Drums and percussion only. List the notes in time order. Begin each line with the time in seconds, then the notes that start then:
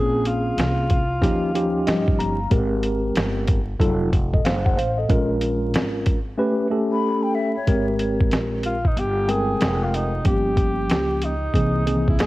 0.25 closed hi-hat
0.58 snare, closed hi-hat
0.90 kick, closed hi-hat
1.22 kick, snare, closed hi-hat
1.55 closed hi-hat
1.87 snare, closed hi-hat
2.08 kick
2.20 closed hi-hat
2.51 kick, closed hi-hat
2.83 closed hi-hat
3.16 snare, closed hi-hat
3.48 kick, closed hi-hat
3.80 kick, closed hi-hat
4.13 kick, closed hi-hat
4.34 kick
4.45 snare, closed hi-hat
4.66 kick
4.79 closed hi-hat
5.09 kick, closed hi-hat
5.41 closed hi-hat
5.74 snare, closed hi-hat
6.06 kick, closed hi-hat
7.67 kick, closed hi-hat
7.99 closed hi-hat
8.21 kick
8.31 snare, closed hi-hat
8.63 closed hi-hat
8.85 kick
8.97 closed hi-hat
9.29 closed hi-hat
9.61 snare, closed hi-hat
9.94 closed hi-hat
10.25 kick, closed hi-hat
10.57 kick, closed hi-hat
10.90 snare, closed hi-hat
11.22 closed hi-hat
11.54 kick, closed hi-hat
11.87 closed hi-hat
12.08 kick
12.19 snare, closed hi-hat